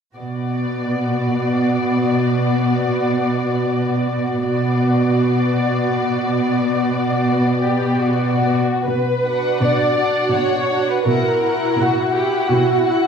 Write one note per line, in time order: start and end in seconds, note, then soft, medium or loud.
0.17 4.43 B2 soft
0.17 4.43 B3 soft
0.17 4.43 F#4 soft
0.17 4.43 D5 soft
4.46 8.59 B2 soft
4.46 8.60 B3 soft
4.46 7.59 F#4 soft
4.46 8.60 D5 soft
7.62 7.99 G4 soft
8.01 8.86 F#4 soft
8.86 9.50 B2 soft
8.86 9.60 B4 soft
9.25 9.96 D4 soft
9.25 9.97 F#4 soft
9.25 9.96 F#5 soft
9.61 10.22 B2 soft
9.61 10.34 D5 soft
9.98 10.69 D4 soft
9.98 10.70 F#4 soft
9.98 10.69 F#5 soft
10.34 10.96 B2 soft
10.34 10.89 C#5 soft
10.70 11.07 D4 soft
10.70 11.06 F#4 soft
10.70 11.05 F#5 soft
10.90 11.08 B4 soft
11.07 11.68 B2 soft
11.07 11.42 E4 soft
11.07 11.42 F#4 soft
11.07 11.78 A#4 soft
11.07 11.42 F#5 soft
11.43 12.13 E4 soft
11.43 12.14 F#4 soft
11.43 12.13 F#5 soft
11.79 12.39 B2 soft
11.79 12.15 F#4 soft
12.14 12.87 E4 soft
12.14 12.87 F#4 soft
12.14 12.50 G4 soft
12.14 12.86 F#5 soft
12.50 13.07 B2 soft
12.50 13.07 F#4 soft
12.87 13.07 E4 soft
12.87 13.07 F#4 soft
12.87 13.07 F#5 soft